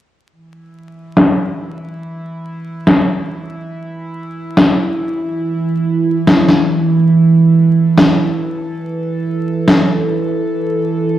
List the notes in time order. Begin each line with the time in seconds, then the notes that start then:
0.32 E3 E4
1.17 snare
2.87 snare
4.57 snare
6.27 snare
6.49 snare
7.13 A4
7.98 snare
9.68 snare